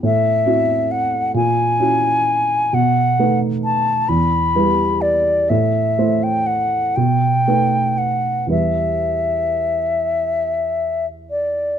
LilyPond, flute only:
\new Staff \with { instrumentName = "Flute" } { \time 6/8 \key e \minor \tempo 4. = 42 e''4 fis''8 gis''4. | fis''4 a''8 b''4 d''8 | e''8. g''16 fis''8 g''4 fis''8 | e''2~ e''8 d''8 | }